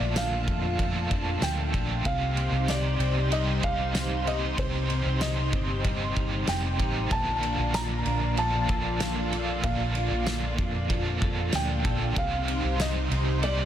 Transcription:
Already playing: A#2 D3 F3 A3 A#3 D4 F4 A4 D5 F5 A5
0.00 A#1
0.16 D4 F5, snare, ride, tambourine
0.47 F2 A3, kick, ride
0.78 F3 A#3 D4, kick, ride
0.82 A4
1.10 F2 D4, kick, ride
1.41 D2 A3 G5, snare, ride, tambourine
1.73 A#1 F3 A#3 D4 A4, kick, ride
2.03 C2 C3 G3 C4 D#4 G4 C5 F5 C6, kick, ride
2.08 D#4 G4
2.37 A#3, ride
2.52 C2 C4
2.68 D#4 D5, snare, ride, tambourine
2.99 C2 C4, ride
3.31 G3 C4 D#4 G4 D#5, ride
3.63 C2 D#4 F5, kick, ride
3.95 C4, snare, ride, tambourine
4.26 C4 D#4 G4 D#5, ride
4.57 C2 C3 G3 C4 C5, kick, ride
4.61 D#4 G4
4.90 C4, ride
5.05 C2
5.21 D#4 D#5, snare, ride, tambourine
5.53 G1 C4, kick, ride
5.84 G3 C4 D#4 G4, kick, ride
6.16 G1 D#4, kick, ride
6.47 F1 C4 G5, snare, ride, tambourine
6.79 A1 C4 D#4 G4, kick, ride
7.09 A#1 A#2 D3 F3 A#3 F4 D5 F5 A5, kick, ride
7.13 A#3 D4
7.43 D4, ride
7.58 A#1
7.74 A#5, snare, ride, tambourine
8.05 A#1 D4, ride
8.37 F3 A#3 D4 A4 A5, ride
8.69 A#1 A4, kick, ride
9.00 D4, snare, ride, tambourine
9.32 F3 A#3 D4 A4, ride
9.63 A#1 A#2 D3 F3 A#3 F5, kick, ride
9.68 D4 A4
9.95 D4, ride
10.11 A#1
10.26 A4, snare, ride, tambourine
10.58 F2 D4, kick, ride
10.89 F3 A#3 D4 A4, kick, ride
11.21 F2 A4, kick, ride
11.53 D2 D4 G5, snare, ride, tambourine
11.84 A#1 F3 A#3 D4 A4, kick, ride
12.15 C2 C3 G3 C4 D#4 G4 C5 F5 C6, kick, ride
12.20 D#4 G4
12.48 C4, ride
12.64 C2
12.79 D#4 D#5, snare, ride, tambourine
13.11 C2 C4, ride
13.42 G3 C4 D#4 D5, ride
13.46 G4

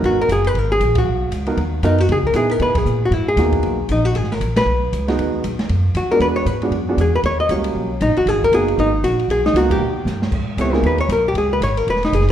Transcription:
Already playing: B3 D#4 F#4 A#4
0.03 G#1 F#4, ride
0.21 A#4
0.29 F#1 G#4, hi-hat pedal, ride
0.44 B4, ride
0.54 G#1, ride
0.59 A#4
0.72 G#4
0.80 A#1, hi-hat pedal, ride
0.95 F#4, kick, ride
1.05 B1
1.31 C#2, hi-hat pedal, ride
1.46 B3 D#4 F#4 A#4, ride
1.57 D#2, ride
1.82 F#2 B3 D#4 F#4 A#4, hi-hat pedal, ride
1.98 F#4, ride
2.08 C#3 G#4, ride
2.23 A#4, kick
2.33 A#2 B3 D#4 E4 G#4, hi-hat pedal, ride
2.49 A#4, ride
2.59 B2 B4, ride
2.75 G#4, muted upright bass stroke, kick, ride
2.85 A#2, hi-hat pedal
3.05 F#4
3.11 G#2 E4, ride
3.28 G#4
3.36 D#2 A#3 B3 D#4 F#4, snare, hi-hat pedal, ride
3.52 kick, ride
3.63 B1, ride
3.89 A#1 D#4, hi-hat pedal, ride
4.05 F#4
4.15 G#1 G#4, ride
4.24 snare
4.32 A#4, snare
4.40 A#1, hi-hat pedal, ride
4.56 B4, snare, ride
4.66 B1
4.92 C#2, hi-hat pedal, ride
5.07 G#3 B3 D#4 F#4, snare, ride
5.18 D#2, ride
5.44 B1, hi-hat pedal, ride
5.59 muted upright bass stroke, snare, ride
5.69 F#2, ride
5.95 D#2 F#4, hi-hat pedal, ride
6.09 G#3 B3 D4 F#4 A#4, muted upright bass stroke
6.19 E2 B4, ride
6.36 C#5
6.46 G#2 B4, hi-hat pedal, ride
6.62 G#3 B3 D4 F#4, ride
6.70 F#2, ride
6.89 G#3 B3 D4 F#4
6.97 E2, hi-hat pedal, ride
7.01 G#4
7.15 B4
7.23 D#2 C#5, ride
7.40 D#5
7.49 C#2 G3 A#3 C#4 F#4 C#5, hi-hat pedal, ride
7.64 ride
7.75 B1
8.01 A#1 D#4, hi-hat pedal, ride
8.09 G1
8.17 D#1 F#4, ride
8.26 G#1 G#4, ride
8.42 A#4, kick
8.52 F#1 A#3 B3 D#4 F#4 G#4, hi-hat pedal, ride
8.68 ride
8.78 G#1 D#4, ride
9.03 A#1 F#4, hi-hat pedal, ride
9.19 ride
9.28 B1 G#4, ride
9.46 D#4, snare
9.54 C#2 A#3 B3 D#4 F#4, hi-hat pedal, ride
9.70 G4, kick, ride
9.79 D#2
10.05 G2, snare, hi-hat pedal
10.22 snare
10.31 G#2, kick, crash
10.57 C#2 B3 C4 E4 G4 A4 C#5, hi-hat pedal, ride
10.72 A#3 B3 D#4 F#4 G#4 A#4, snare
10.82 D#2, ride
10.87 B4
10.98 C#5, ride
11.08 B1, hi-hat pedal, ride
11.12 A#4
11.28 G4
11.34 C#2, ride
11.38 G#4
11.53 B4
11.60 G#1 C#5, hi-hat pedal, ride
11.77 A#4, ride
11.87 E1 B4, ride
11.96 snare
12.03 D#4, snare, ride
12.13 F#1 G#4, hi-hat pedal, ride
12.21 snare
12.28 ride

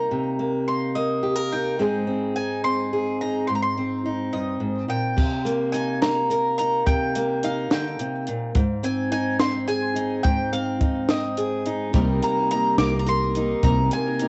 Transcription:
Already playing: A#3 D#4 A#5
0.11 C3
0.39 A#3
0.68 D#4 C6
0.95 A#3 D#5
1.23 G4
1.36 A#4
1.52 D#4 G5
1.79 G#2 G#3 C4 D#4 G#4
2.07 C4
2.36 D#4 G#5
2.64 C4 C6
2.93 G#4
3.21 D#4 A#5
3.47 G#2 C6
3.55 A#5
3.63 C6
3.78 C4
4.06 D#4
4.33 G2 D#5
4.60 G#2
4.88 A#2 G5
5.17 C3, kick, crash
5.45 A#3, closed hi-hat
5.72 D#4 G#5, closed hi-hat
6.02 A#3 A#5, snare, closed hi-hat
6.30 A#4, closed hi-hat
6.58 D#4 A#5, closed hi-hat
6.86 C3 G5, kick, closed hi-hat
7.15 A#3, closed hi-hat
7.43 D#4 F5, closed hi-hat
7.70 D3 G5, snare, closed hi-hat
7.99 C3, closed hi-hat
8.27 A#2, closed hi-hat
8.55 G#2, kick, closed hi-hat
8.83 C4 G#5, closed hi-hat
9.12 D#4 G#5, closed hi-hat
9.39 C4 C6, snare, closed hi-hat
9.68 G#4 G#5, closed hi-hat
9.96 D#4, closed hi-hat
10.23 G#2 G5, kick, closed hi-hat
10.53 C4 F5, closed hi-hat
10.81 D#4, kick, closed hi-hat
11.09 C4 D#5, snare, closed hi-hat
11.37 G#4, closed hi-hat
11.66 D#4, closed hi-hat
11.93 C2 C3 G3 A#3 D#4 A#4, kick, closed hi-hat
12.07 A#3 D#4 A#4
12.22 A#3 A#5, closed hi-hat
12.37 A#3 D#4 A#4
12.51 G3 A#3 D#4 A#4 A#5, closed hi-hat
12.78 C2 C3 G3 A#3 D#4 A#4 D6, snare, closed hi-hat
12.92 A#3 D#4 A#4
12.99 A#5
13.07 A#4 C6, closed hi-hat
13.22 A#3 D#4 A#4
13.35 G3 A#3 D#4, closed hi-hat
13.39 A#4
13.63 C2 C3 G3 A#3 D#4 A#4 A#5, kick, closed hi-hat
13.79 A#3 D#4 A#4
13.91 A#3 G#5, closed hi-hat
14.07 A#3 D#4 A#4
14.19 G3 A#3 D#4 A#4, closed hi-hat

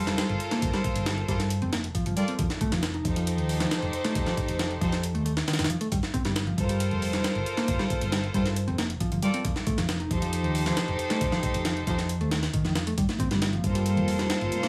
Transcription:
Already playing: F1 F4 A4 A#4 C5
0.07 G3, snare, closed hi-hat
0.18 G3, snare, closed hi-hat
0.29 G1, closed hi-hat
0.40 closed hi-hat
0.51 A#3, snare, closed hi-hat
0.62 G1, kick, closed hi-hat
0.73 G3, snare, closed hi-hat
0.84 kick, closed hi-hat
0.95 G1, closed hi-hat
1.06 G3, snare, closed hi-hat
1.18 closed hi-hat
1.28 G2 G3 F4 A4 A#4 C5, kick, closed hi-hat
1.40 snare, closed hi-hat
1.50 closed hi-hat
1.62 F1 C4, closed hi-hat
1.73 A#3, snare, closed hi-hat
1.84 closed hi-hat
1.95 F3, kick, closed hi-hat
2.06 G1 F3, closed hi-hat
2.17 G3 F4 A4 A#4 D5, closed hi-hat
2.28 C4, closed hi-hat
2.39 F1 F3, kick, closed hi-hat
2.50 snare, closed hi-hat
2.61 A3, kick, closed hi-hat
2.72 F1 F3, snare, closed hi-hat
2.83 F3, snare, closed hi-hat
2.94 D#4, closed hi-hat
3.05 F2 D#4 G4 A4 C5, kick, closed hi-hat
3.16 F3, closed hi-hat
3.27 closed hi-hat
3.38 D#2, closed hi-hat
3.49 open hi-hat
3.60 F3, snare, closed hi-hat
3.71 F3, snare, closed hi-hat
3.82 F1, closed hi-hat
3.93 closed hi-hat
4.04 A3, snare, closed hi-hat
4.15 F1, kick, closed hi-hat
4.26 F3, snare, closed hi-hat
4.37 kick, closed hi-hat
4.48 F1, closed hi-hat
4.59 F3, snare, closed hi-hat
4.71 closed hi-hat
4.81 F2 F3 D#4 G4 A4 C5, kick, closed hi-hat
4.92 snare, closed hi-hat
5.03 closed hi-hat
5.15 D#2 A3, closed hi-hat
5.25 A3, closed hi-hat
5.37 snare, closed hi-hat
5.47 D#3, snare, closed hi-hat
5.53 snare, closed hi-hat
5.59 F1 D#3, snare, closed hi-hat
5.64 snare, closed hi-hat
5.70 F3, closed hi-hat
5.81 A3, closed hi-hat
5.92 G1 G3, kick, closed hi-hat
6.03 snare, closed hi-hat
6.14 C4, kick, closed hi-hat
6.25 G1 G3, snare, closed hi-hat
6.36 snare, closed hi-hat
6.47 F3, closed hi-hat
6.58 G2 F4 A4 A#4 C5, kick, closed hi-hat
6.69 G3, closed hi-hat
6.80 closed hi-hat
6.91 F1, closed hi-hat
7.02 open hi-hat
7.13 G3, snare, closed hi-hat
7.24 G3, snare, closed hi-hat
7.35 G1, closed hi-hat
7.46 closed hi-hat
7.57 A#3, snare, closed hi-hat
7.68 G1, kick, closed hi-hat
7.79 G3, snare, closed hi-hat
7.90 kick, closed hi-hat
8.01 G1, closed hi-hat
8.12 G3, snare, closed hi-hat
8.24 closed hi-hat
8.34 G2 G3 F4 A4 A#4 C5, kick, closed hi-hat
8.46 snare, closed hi-hat
8.56 closed hi-hat
8.68 F1 C4, closed hi-hat
8.78 A#3, snare, closed hi-hat
8.90 closed hi-hat
9.00 F3, kick, closed hi-hat
9.12 G1 F3, closed hi-hat
9.22 G3 F4 A4 A#4 D5, closed hi-hat
9.34 C4, closed hi-hat
9.45 F1 F3, kick, closed hi-hat
9.56 snare, closed hi-hat
9.67 A3, kick, closed hi-hat
9.78 F1 F3, snare, closed hi-hat
9.89 F3, snare, closed hi-hat
10.00 D#4, closed hi-hat
10.11 F2 D#4 G4 A4 C5, kick, closed hi-hat
10.22 F3, closed hi-hat
10.33 closed hi-hat
10.44 D#2, closed hi-hat
10.55 open hi-hat
10.66 F3, snare, closed hi-hat
10.77 F3, snare, closed hi-hat
10.88 F1, closed hi-hat
10.99 closed hi-hat
11.10 A3, snare, closed hi-hat
11.21 F1, kick, closed hi-hat
11.32 F3, snare, closed hi-hat
11.43 kick, closed hi-hat
11.54 F1, closed hi-hat
11.65 F3, snare, closed hi-hat
11.77 closed hi-hat
11.87 F2 F3 D#4 G4 A4 C5, kick, closed hi-hat
11.98 snare, closed hi-hat
12.09 closed hi-hat
12.21 D#2 A3, closed hi-hat
12.31 A3, snare, closed hi-hat
12.43 snare, closed hi-hat
12.53 D#3, kick, closed hi-hat
12.65 F2 D#3, snare, closed hi-hat
12.75 F3, snare, closed hi-hat
12.87 A3, closed hi-hat
12.98 G1 C3 G3 A#3 F4, kick, closed hi-hat
13.09 snare, closed hi-hat, high conga
13.19 C4, kick, closed hi-hat, low conga
13.31 G1 G3, snare, closed hi-hat
13.42 G3, snare, closed hi-hat
13.53 F3, closed hi-hat
13.64 G2 F4 A4 A#4 C5, kick, closed hi-hat
13.75 G3, closed hi-hat
13.86 closed hi-hat
13.96 F1, closed hi-hat, low conga
14.08 open hi-hat
14.19 G3, snare, closed hi-hat
14.30 G3, snare, closed hi-hat
14.41 G1, closed hi-hat
14.52 closed hi-hat, high conga
14.63 A#3, snare, closed hi-hat

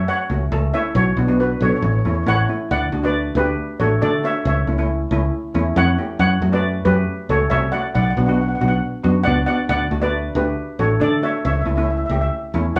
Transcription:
Already playing: A3 C#4 F#4
0.08 C#5 F#5
0.30 C#2 A3 C#4 F#4
0.52 C#2 A3 C#4 A4
0.73 A3 C#4 E4 C#5 E5
0.95 B1 F#4 C#5
1.17 B1 B3 D4 F#4
1.28 B3 D4 F#4
1.40 F#4 B4
1.60 B1 B3 D4 F#4 A4 C#5
1.69 C#5
1.76 C#5
1.82 A1 C#5
1.92 C#5
1.99 C#5
2.05 E2 A3 C#4 E4 C#5
2.14 C#5
2.23 A1 A3 C#4 C#5
2.27 E4 C#5 F#5
2.35 C#5
2.49 A3 C#4 E4
2.71 D2 D5 F#5
2.92 D2 A3 D4 F#4
3.03 A3 D4 F#4 B4 D5
3.35 D2 A3 D4 F#4 G4 B4
3.80 A1 A3 D4 F#4 A4 C#5
4.01 D3 A3 D4 F#4 A4 D5
4.23 A3 D4 F#4 C#5 E5
4.45 C#2 C#5 E5
4.67 C#2 A3 C#4 E4
4.78 A3 C#4 E4
5.11 C#2 A3 C#4 E4
5.54 E2 A3 C#4 E4
5.76 F2 A3 C#4 E4 C#5 F#5
5.98 A3 C#4 G4
6.19 F#2 C#5 F#5
6.41 F#2 A3 C#4 F#4
6.52 A3 C#4 F#4 B4 D5
6.85 F#2 A3 C#4 F#4 G4 B4
7.29 C#2 A3 C#4 F#4 A4 C#5
7.50 C2 A3 C#4 F#4 C#5 E5
7.72 A3 C#4 F#4 D5 F#5
7.95 B1 D5 F#5
8.02 F#5
8.10 F#5
8.17 B1 B3 D4 F#4 F#5
8.26 B3 D4 F#4 F#5
8.34 F#5
8.41 F#5
8.49 F#5
8.55 F#5
8.60 B1 B3 D4 F#4 F#5
8.68 F#5
9.04 F#2 B3 D4 F#4
9.23 C#2 B3 D4 F#4 D5 F#5
9.46 B3 D4 F#4 D5 F#5
9.69 D2 D5 F#5
9.91 D2 A3 D4 F#4
10.02 A3 D4 F#4 B4 D5
10.35 D2 A3 D4 F#4 G4 B4
10.79 A1 A3 D4 F#4 A4 C#5
11.00 D3 A3 D4 A4 D5
11.22 A3 D4 F#4 C#5 E5
11.45 C#2 C#5 E5
11.53 E5
11.61 E5
11.65 C#2 A3 C#4 E4 E5
11.76 A3 C#4 E4 E5
11.83 E5
11.90 E5
11.97 E5
12.06 C#2 E5
12.10 A3 C#4 G4 E5
12.21 E5
12.54 E2 A3 C#4 E4
12.76 F2 A3 C#4 F#5

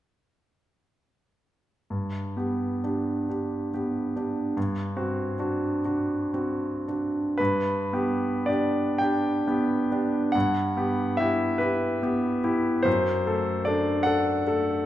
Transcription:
1.90 G2
2.37 B3 G4
2.84 D4 G4
3.29 D4 G4
3.74 B3 G4
4.16 D4 G4
4.57 G2
4.97 C4 F#4
5.39 D4 F#4
5.85 D4 F#4
6.34 C4 F#4
6.88 D4 F#4
7.38 G2 B4
7.93 B3 G4
8.46 D4 G4 D5
8.98 D4 G4 G5
9.47 B3 G4
9.92 D4 G4
10.32 G2 F#5
10.77 B3 G4
11.17 E4 G4 E5
11.58 E4 G4 B4
12.03 B3 G4
12.44 E4 G4
12.83 F#2 C5
13.27 A3 A4
13.65 D4 A4 D5
14.03 D4 A4 F#5
14.47 A3 A4

